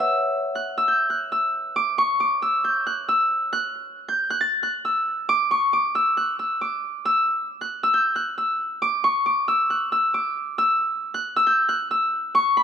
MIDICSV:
0, 0, Header, 1, 2, 480
1, 0, Start_track
1, 0, Time_signature, 4, 2, 24, 8
1, 0, Tempo, 441176
1, 13745, End_track
2, 0, Start_track
2, 0, Title_t, "Harp"
2, 0, Program_c, 0, 46
2, 0, Note_on_c, 0, 71, 88
2, 0, Note_on_c, 0, 73, 74
2, 0, Note_on_c, 0, 76, 91
2, 0, Note_on_c, 0, 78, 73
2, 0, Note_on_c, 0, 88, 110
2, 546, Note_off_c, 0, 71, 0
2, 602, Note_on_c, 0, 90, 76
2, 636, Note_off_c, 0, 73, 0
2, 840, Note_off_c, 0, 88, 0
2, 844, Note_on_c, 0, 88, 92
2, 955, Note_on_c, 0, 91, 83
2, 1021, Note_off_c, 0, 78, 0
2, 1021, Note_off_c, 0, 90, 0
2, 1195, Note_on_c, 0, 90, 81
2, 1260, Note_off_c, 0, 91, 0
2, 1390, Note_off_c, 0, 76, 0
2, 1431, Note_off_c, 0, 88, 0
2, 1435, Note_on_c, 0, 88, 76
2, 1914, Note_on_c, 0, 86, 107
2, 2156, Note_on_c, 0, 85, 88
2, 2221, Note_off_c, 0, 86, 0
2, 2349, Note_off_c, 0, 90, 0
2, 2395, Note_on_c, 0, 86, 83
2, 2461, Note_off_c, 0, 85, 0
2, 2632, Note_off_c, 0, 88, 0
2, 2636, Note_on_c, 0, 88, 92
2, 2876, Note_on_c, 0, 91, 83
2, 3117, Note_on_c, 0, 90, 79
2, 3183, Note_off_c, 0, 91, 0
2, 3352, Note_off_c, 0, 88, 0
2, 3356, Note_on_c, 0, 88, 89
2, 3721, Note_off_c, 0, 86, 0
2, 3832, Note_off_c, 0, 90, 0
2, 3837, Note_on_c, 0, 90, 104
2, 4444, Note_on_c, 0, 91, 83
2, 4509, Note_off_c, 0, 90, 0
2, 4593, Note_off_c, 0, 88, 0
2, 4682, Note_on_c, 0, 90, 92
2, 4747, Note_off_c, 0, 91, 0
2, 4794, Note_on_c, 0, 93, 88
2, 5031, Note_off_c, 0, 90, 0
2, 5036, Note_on_c, 0, 90, 82
2, 5275, Note_on_c, 0, 88, 74
2, 5754, Note_on_c, 0, 86, 115
2, 5937, Note_off_c, 0, 93, 0
2, 5994, Note_on_c, 0, 85, 88
2, 6059, Note_off_c, 0, 86, 0
2, 6190, Note_off_c, 0, 90, 0
2, 6235, Note_on_c, 0, 86, 83
2, 6300, Note_off_c, 0, 85, 0
2, 6470, Note_off_c, 0, 88, 0
2, 6475, Note_on_c, 0, 88, 89
2, 6715, Note_on_c, 0, 90, 77
2, 6949, Note_off_c, 0, 88, 0
2, 6954, Note_on_c, 0, 88, 70
2, 7191, Note_off_c, 0, 86, 0
2, 7195, Note_on_c, 0, 86, 85
2, 7671, Note_off_c, 0, 88, 0
2, 7675, Note_on_c, 0, 88, 114
2, 7869, Note_off_c, 0, 90, 0
2, 8282, Note_on_c, 0, 90, 79
2, 8518, Note_off_c, 0, 88, 0
2, 8521, Note_off_c, 0, 86, 0
2, 8523, Note_on_c, 0, 88, 100
2, 8635, Note_on_c, 0, 91, 84
2, 8700, Note_off_c, 0, 90, 0
2, 8874, Note_on_c, 0, 90, 83
2, 8940, Note_off_c, 0, 91, 0
2, 9110, Note_off_c, 0, 88, 0
2, 9115, Note_on_c, 0, 88, 75
2, 9595, Note_on_c, 0, 86, 112
2, 9834, Note_on_c, 0, 85, 86
2, 9900, Note_off_c, 0, 86, 0
2, 10028, Note_off_c, 0, 90, 0
2, 10073, Note_on_c, 0, 86, 83
2, 10139, Note_off_c, 0, 85, 0
2, 10310, Note_off_c, 0, 88, 0
2, 10314, Note_on_c, 0, 88, 89
2, 10555, Note_on_c, 0, 90, 73
2, 10789, Note_off_c, 0, 88, 0
2, 10794, Note_on_c, 0, 88, 79
2, 11029, Note_off_c, 0, 86, 0
2, 11033, Note_on_c, 0, 86, 86
2, 11509, Note_off_c, 0, 88, 0
2, 11513, Note_on_c, 0, 88, 104
2, 11710, Note_off_c, 0, 90, 0
2, 12123, Note_on_c, 0, 90, 82
2, 12359, Note_off_c, 0, 86, 0
2, 12359, Note_off_c, 0, 88, 0
2, 12364, Note_on_c, 0, 88, 97
2, 12475, Note_on_c, 0, 91, 85
2, 12541, Note_off_c, 0, 90, 0
2, 12715, Note_on_c, 0, 90, 80
2, 12780, Note_off_c, 0, 91, 0
2, 12951, Note_off_c, 0, 88, 0
2, 12956, Note_on_c, 0, 88, 79
2, 13433, Note_on_c, 0, 85, 120
2, 13675, Note_on_c, 0, 83, 92
2, 13745, Note_off_c, 0, 83, 0
2, 13745, Note_off_c, 0, 85, 0
2, 13745, Note_off_c, 0, 88, 0
2, 13745, Note_off_c, 0, 90, 0
2, 13745, End_track
0, 0, End_of_file